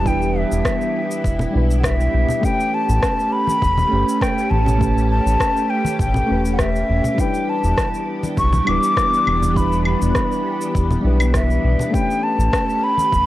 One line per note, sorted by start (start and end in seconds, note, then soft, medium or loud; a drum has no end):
0.00 0.45 E1 loud
0.00 2.39 E3 medium
0.00 0.03 G3 medium
0.00 1.49 G3 medium
0.00 2.40 B3 medium
0.00 0.05 D4 medium
0.00 0.07 E4 medium
0.00 11.90 G4 medium
0.00 0.09 B4 medium
0.05 1.51 D4 medium
0.05 2.41 E4 medium
0.05 1.52 E4 medium
0.05 0.40 G5 medium
0.05 kick loud
0.05 shaker medium
0.09 1.53 B4 medium
0.22 shaker soft
0.38 1.59 E5 medium
0.52 0.62 E1 loud
0.52 shaker medium
0.65 kick loud
0.65 cross-stick loud
0.65 shaker medium
0.82 shaker soft
1.11 shaker medium
1.24 1.47 E1 medium
1.24 kick loud
1.24 shaker medium
1.39 low conga medium
1.39 shaker soft
1.51 2.38 G3 medium
1.51 2.39 D4 medium
1.55 2.09 B1 medium
1.55 2.41 E4 medium
1.55 2.42 B4 medium
1.71 shaker medium
1.80 1.87 F#5 medium
1.84 2.46 E5 medium
1.84 kick loud
1.84 cross-stick loud
1.84 shaker medium
2.01 shaker soft
2.14 2.26 B1 medium
2.29 low conga medium
2.29 shaker medium
2.41 3.87 A3 medium
2.41 7.14 A3 medium
2.41 3.88 C#4 medium
2.41 7.15 C#4 medium
2.41 2.76 G5 loud
2.41 kick loud
2.41 shaker medium
2.45 3.89 G4 medium
2.45 3.90 B4 medium
2.60 shaker soft
2.74 3.34 A5 medium
2.89 2.99 A1 loud
2.89 shaker medium
3.03 kick loud
3.03 cross-stick loud
3.03 shaker medium
3.20 shaker soft
3.32 4.23 B5 loud
3.47 high conga medium
3.47 shaker medium
3.62 3.85 E1 medium
3.62 kick loud
3.62 shaker medium
3.77 high conga medium
3.77 low conga medium
3.77 shaker soft
3.88 4.04 G1 medium
3.88 4.76 A3 medium
3.88 4.77 C#4 medium
3.93 4.78 G4 medium
3.93 4.79 B4 medium
4.09 shaker medium
4.21 4.52 G5 medium
4.21 kick loud
4.21 cross-stick medium
4.21 shaker medium
4.38 shaker soft
4.50 5.20 A1 loud
4.50 5.10 A5 loud
4.50 high conga medium
4.66 low conga medium
4.66 shaker medium
4.78 6.25 A3 medium
4.78 6.26 C#4 medium
4.78 6.27 G4 medium
4.78 kick loud
4.82 6.28 B4 medium
4.82 shaker medium
4.98 shaker soft
5.11 5.72 A5 loud
5.26 5.37 A1 loud
5.26 shaker medium
5.40 kick loud
5.40 cross-stick medium
5.40 shaker medium
5.57 shaker soft
5.70 6.00 G5 medium
5.85 high conga medium
5.85 shaker medium
6.00 6.23 A1 medium
6.00 6.55 G5 medium
6.00 kick loud
6.00 shaker medium
6.14 low conga medium
6.14 shaker soft
6.26 6.84 E1 medium
6.26 7.14 A3 medium
6.26 7.15 C#4 medium
6.31 7.16 G4 medium
6.31 7.17 B4 medium
6.46 shaker medium
6.54 6.62 F#5 medium
6.59 7.22 E5 medium
6.59 kick loud
6.59 cross-stick loud
6.59 shaker medium
6.76 shaker soft
6.89 7.01 E1 loud
7.04 low conga medium
7.04 shaker medium
7.15 11.90 E3 medium
7.15 8.62 G3 medium
7.15 11.90 B3 medium
7.15 8.63 D4 medium
7.15 11.90 D4 medium
7.15 kick medium
7.19 8.64 E4 medium
7.19 8.65 B4 medium
7.19 7.51 G5 medium
7.19 shaker medium
7.34 shaker soft
7.50 8.09 A5 medium
7.64 7.75 E1 loud
7.64 shaker medium
7.78 kick loud
7.78 cross-stick loud
7.78 shaker medium
7.95 shaker soft
8.23 high conga medium
8.23 shaker medium
8.38 8.61 B1 medium
8.38 8.70 C#6 loud
8.38 kick loud
8.38 shaker soft
8.53 high conga medium
8.53 low conga medium
8.53 shaker soft
8.64 8.79 D1 medium
8.64 9.52 G3 medium
8.64 9.52 D4 medium
8.64 claves medium
8.68 9.54 E4 medium
8.68 9.55 B4 medium
8.68 9.58 D6 loud
8.83 shaker medium
8.97 kick loud
8.97 cross-stick medium
8.97 shaker medium
9.13 shaker soft
9.27 9.96 E1 loud
9.27 high conga medium
9.27 claves medium
9.42 low conga medium
9.42 shaker medium
9.54 10.99 G3 medium
9.54 11.01 D4 medium
9.54 9.86 B5 loud
9.54 kick medium
9.54 shaker soft
9.58 11.02 E4 medium
9.58 11.03 B4 medium
9.72 shaker soft
9.85 11.01 B5 medium
9.85 claves medium
10.02 10.12 E1 loud
10.02 shaker medium
10.15 kick loud
10.15 cross-stick medium
10.15 shaker medium
10.32 shaker soft
10.61 shaker medium
10.75 10.98 E1 medium
10.75 kick loud
10.75 shaker medium
10.91 low conga medium
10.91 shaker soft
11.01 11.58 B1 medium
11.01 11.88 G3 medium
11.01 11.89 D4 medium
11.05 11.91 E4 medium
11.05 11.91 B4 medium
11.20 claves medium
11.20 shaker medium
11.34 11.95 E5 medium
11.34 kick loud
11.34 cross-stick medium
11.34 shaker medium
11.50 shaker soft
11.64 11.76 B1 medium
11.79 low conga medium
11.79 shaker medium
11.90 13.26 A3 medium
11.90 13.26 C#4 medium
11.90 13.26 G4 medium
11.90 12.25 G5 loud
11.90 kick medium
11.94 13.26 A3 medium
11.94 13.26 G4 medium
11.94 13.26 B4 medium
11.94 shaker soft
12.10 shaker soft
12.23 12.85 A5 loud
12.38 12.50 A1 loud
12.38 shaker medium
12.53 kick loud
12.53 cross-stick loud
12.53 shaker soft
12.70 shaker soft
12.84 13.26 B5 loud
12.98 high conga medium
12.98 shaker medium
13.12 13.26 E1 medium
13.12 kick medium
13.12 shaker soft